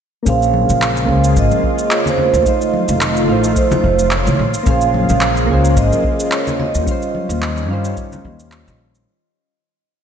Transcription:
0.23 upright bass A#1, analog synth pad C#3 G#3 A#3 F4, synth keys A#3 C#4, kick, shaker
0.27 synth keys G#4 C5, vibraphone F5
0.42 shaker
0.54 high conga
0.70 upright bass A#1, shaker
0.82 clap, shaker
0.97 shaker
1.05 upright bass C#2, synth keys A#3 C#4, kick
1.10 synth keys G#4 C5
1.24 shaker
1.36 upright bass G#1, vibraphone D#5, kick, shaker
1.51 high conga, shaker
1.64 kick
1.79 shaker
1.91 vibraphone C#5, clap, shaker
2.06 vibraphone C5, low conga, shaker
2.18 low conga
2.33 upright bass D#2, shaker
2.43 synth keys A3 D#4, kick, shaker
2.47 analog synth pad D#3 F3 A3 F4, synth keys F4 C5, vibraphone D#5
2.61 shaker
2.74 high conga
2.88 upright bass F1, shaker
3.01 clap, shaker
3.17 shaker
3.25 upright bass A1, synth keys A3 D#4
3.29 synth keys F4 C5
3.44 shaker
3.56 vibraphone C5, kick, shaker
3.71 vibraphone C5, high conga, low conga, shaker
3.84 upright bass F1, kick
3.99 shaker
4.11 clap, shaker
4.27 upright bass C2, shaker
4.39 upright bass A#1, analog synth pad C#3 G#3 A#3
4.54 shaker
4.63 upright bass A#1, synth keys A#3 C#4, vibraphone F5, kick, shaker
4.68 synth keys G#4 C5
4.81 shaker
4.94 high conga
5.09 upright bass A#1, shaker
5.21 clap, shaker
5.37 shaker
5.46 upright bass C#2, synth keys A#3 C#4, kick
5.51 synth keys G#4 C5
5.65 shaker
5.77 upright bass G#1, vibraphone D#5, kick, shaker
5.93 high conga, shaker
6.04 kick
6.20 shaker
6.32 vibraphone C#5, clap, shaker
6.47 low conga, shaker
6.59 vibraphone D#5, low conga
6.75 upright bass D#2, shaker
6.84 synth keys G3 C#4, kick
6.88 analog synth pad D#3 G3 C#4, synth keys F4 C5, shaker
7.02 shaker
7.15 high conga
7.29 upright bass D#2, shaker
7.42 clap, shaker
7.57 shaker
7.66 upright bass G2, synth keys G3 C#4
7.71 synth keys F4 C5
7.85 shaker
7.97 kick, shaker
8.12 high conga, low conga, shaker
8.25 upright bass D#2, kick
8.40 shaker
8.52 clap, shaker
8.68 upright bass A#1, shaker
8.95 shaker

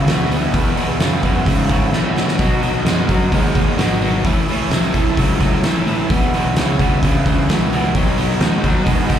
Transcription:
Already playing: tonewheel organ B3 E4 G#4 E5
0.07 picked electric bass D2, overdriven electric guitar E2 B2, snare, open hi-hat
0.31 overdriven electric guitar E2 B2, open hi-hat
0.53 overdriven electric guitar E2 B2, picked electric bass E2, kick, open hi-hat
0.76 overdriven electric guitar E2 B2, muted picked electric bass stroke, open hi-hat
1.00 overdriven electric guitar E2 C#3, picked electric bass F#2, snare, open hi-hat
1.23 overdriven electric guitar E2 B2, kick, open hi-hat
1.46 overdriven electric guitar E2 C#3, picked electric bass G#2, kick, open hi-hat
1.69 overdriven electric guitar E2 C#3, kick, open hi-hat
1.92 overdriven electric guitar E2 B2, picked electric bass A2, snare
2.16 overdriven electric guitar E2 B2, snare
2.28 snare
2.38 overdriven electric guitar B2 F#3, picked electric bass B2, tonewheel organ B3 D#4 F#4 D#5, kick, open hi-hat
2.62 overdriven electric guitar B2 F#3, open hi-hat
2.85 picked electric bass F#2, overdriven electric guitar B2 G#3, snare, open hi-hat
3.08 overdriven electric guitar B2 F#3, kick, open hi-hat
3.32 picked electric bass D#2, overdriven electric guitar B2 G#3, kick, open hi-hat
3.55 overdriven electric guitar B2 G#3, kick, open hi-hat
3.78 picked electric bass G#1, overdriven electric guitar B2 F#3, snare, open hi-hat
4.01 overdriven electric guitar B2 F#3, open hi-hat
4.24 picked electric bass A1, overdriven electric guitar A2 E3, tonewheel organ C#4 E4 A4 E5, kick, open hi-hat
4.48 overdriven electric guitar A2 E3, muted picked electric bass stroke, open hi-hat
4.70 picked electric bass B1, overdriven electric guitar A2 F#3, snare, open hi-hat
4.94 overdriven electric guitar A2 E3, kick, open hi-hat
5.17 picked electric bass C#2, overdriven electric guitar A2 F#3, kick, open hi-hat
5.41 overdriven electric guitar A2 F#3, kick, snare, open hi-hat
5.63 picked electric bass A1, overdriven electric guitar A2 E3, snare, open hi-hat
5.86 overdriven electric guitar A2 E3, open hi-hat
6.09 picked electric bass B1, overdriven electric guitar E2 B2, tonewheel organ B3 E4 G#4 E5, kick, open hi-hat
6.34 overdriven electric guitar E2 B2, open hi-hat
6.56 picked electric bass C#2, overdriven electric guitar E2 C#3, snare, open hi-hat
6.79 overdriven electric guitar E2 B2, kick, open hi-hat
7.03 picked electric bass D2, overdriven electric guitar E2 C#3, kick, open hi-hat
7.26 overdriven electric guitar E2 C#3, kick, open hi-hat
7.48 picked electric bass C#2, overdriven electric guitar E2 B2, snare, open hi-hat
7.72 overdriven electric guitar E2 B2, open hi-hat
7.95 picked electric bass B1, overdriven electric guitar B2 F#3, tonewheel organ C4 E4 G4 E5, kick, open hi-hat
8.10 tonewheel organ B3 D#4 F#4 D#5
8.17 overdriven electric guitar B2 F#3, open hi-hat
8.40 picked electric bass D#2, overdriven electric guitar B2 G#3, snare, open hi-hat
8.64 overdriven electric guitar B2 F#3, kick, open hi-hat
8.85 picked electric bass G#2, overdriven electric guitar B2 G#3, kick, open hi-hat
9.08 overdriven electric guitar B2 G#3, kick, snare, open hi-hat

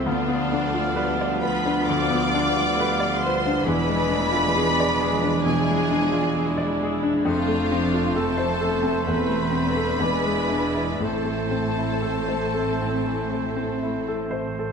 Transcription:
0.04 double bass section D2, grand piano D2, cello section D2, french horn section F3 B3, viola section B3 F4, bassoon B3, violin section D4 D5, oboe F5
0.28 grand piano B3
0.50 viola section A3, grand piano D4
0.74 grand piano F4
0.95 viola section G3 F4, grand piano B4
1.21 grand piano D5
1.41 viola section F3, grand piano B4, violin section B5
1.45 violin section B4
1.66 grand piano D4
1.85 grand piano D2, viola section F3, violin section D5 D6
2.10 grand piano B3
2.32 viola section G3, grand piano D4
2.57 grand piano F4
2.80 grand piano B4
3.00 grand piano D5
3.19 violin section C6
3.24 grand piano B4, violin section C5
3.46 grand piano D4
3.64 double bass section E1, grand piano E2, cello section E2, french horn section F3 D4, bassoon G#3, viola section G#3 E4, violin section B4 B5, oboe D5
3.89 grand piano G#3
4.09 viola section A3, grand piano D4
4.32 grand piano F4
4.54 viola section B3 D4, grand piano G#4
4.80 grand piano D5
5.00 viola section G#3, grand piano G#4
5.22 grand piano D4
5.45 grand piano B2, viola section E4, violin section G#4 G#5
5.70 grand piano G#3
5.91 grand piano D4
6.13 grand piano F4
6.35 viola section E4, grand piano G#4
6.58 grand piano D5
6.82 grand piano G#4
7.03 grand piano D4
7.24 double bass section F1, grand piano F2, cello section F2, viola section A3 D4, bassoon A3, french horn section A3, violin section F4 F5, oboe C5
7.47 grand piano A3
7.71 grand piano C4, viola section D4
7.94 grand piano F4
8.15 viola section C4, french horn section C4, violin section A4 A5, grand piano A4
8.37 grand piano C5
8.61 viola section B3, grand piano A4
8.83 grand piano C4
9.07 double bass section E1, grand piano E2, cello section E2, viola section A3 C4, violin section B4 B5
9.28 grand piano A3
9.51 grand piano C4, viola section D4
9.76 grand piano A4
9.99 double bass section E1, grand piano E2, bassoon G#3, viola section G#3 E4, oboe D5
10.03 cello section E2, french horn section G#3 D4
10.26 grand piano G#3
10.50 viola section G#3, grand piano D4
10.75 grand piano E4
11.00 double bass section A1, grand piano A2, cello section A2, bassoon A3, french horn section A3 C4, oboe C5
11.04 viola section A3 C4, violin section A4 A5
11.25 grand piano A3
11.51 grand piano C4
11.78 grand piano E4
12.02 grand piano A4
12.28 grand piano C5
12.54 grand piano A4
12.81 grand piano C4
13.06 grand piano E3
13.32 grand piano A3
13.56 grand piano C4
13.83 grand piano E4
14.08 grand piano A4
14.31 grand piano C5
14.59 grand piano A4

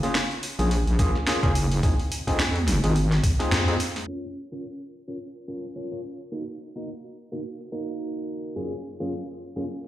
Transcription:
0.03 tine electric piano A#3 C#4 F4 G#4, open hi-hat
0.15 snare, open hi-hat
0.31 open hi-hat
0.43 open hi-hat
0.59 wobble bass A#1, tine electric piano A#3 C#4 F4 G#4, open hi-hat
0.71 open hi-hat
0.87 wobble bass A#1, open hi-hat
0.99 tine electric piano A#3 C#4 F4 G#4, kick, open hi-hat
1.15 snare
1.27 tine electric piano A#3 C#4 F4 G#4, snare, open hi-hat
1.43 wobble bass F#1, tine electric piano A#3 C#4 F4 G#4, kick, open hi-hat
1.55 open hi-hat
1.71 open hi-hat
1.83 tine electric piano C4 D#4 F4 G#4, kick, open hi-hat
1.99 open hi-hat
2.12 open hi-hat
2.27 wobble bass F2, tine electric piano C4 D#4 F4 G#4, kick, open hi-hat
2.40 snare, open hi-hat
2.56 open hi-hat
2.68 snare, open hi-hat
2.83 wobble bass G#1, tine electric piano C4 D#4 F4 G#4, open hi-hat
2.96 open hi-hat
3.12 snare, open hi-hat
3.24 kick, open hi-hat
3.39 tine electric piano C4 D#4 F4 G#4, snare, open hi-hat
3.51 wobble bass F2, snare, open hi-hat
3.67 tine electric piano C4 D#4 F4 G#4, open hi-hat
3.80 open hi-hat
3.96 snare, open hi-hat
4.08 tine electric piano C#4 F4 A#4 C#5
4.52 tine electric piano C#4 F4 A#4 C#5
5.08 tine electric piano C#4 F4 A#4 C#5, closed hi-hat
5.36 closed hi-hat
5.48 tine electric piano C#4 F4 A#4 C#5
5.64 closed hi-hat
5.76 tine electric piano C#4 F4 A#4 C#5
5.92 tine electric piano C#4 F4 A#4 C#5, closed hi-hat
6.20 closed hi-hat
6.32 tine electric piano A#3 D#4 F#4 A#4
6.76 tine electric piano A#3 D#4 F#4 A#4, closed hi-hat
7.32 tine electric piano A#3 D#4 F#4 A#4, closed hi-hat
7.60 closed hi-hat
7.72 tine electric piano A#3 D#4 F#4 A#4
7.88 closed hi-hat
8.16 closed hi-hat
8.44 closed hi-hat
8.56 tine electric piano F#2 A#3 C#4 F4 G#4
9.00 tine electric piano F#2 A#3 C#4 F4 G#4, closed hi-hat
9.56 tine electric piano F#2 A#3 C#4 F4 G#4, closed hi-hat
9.84 closed hi-hat

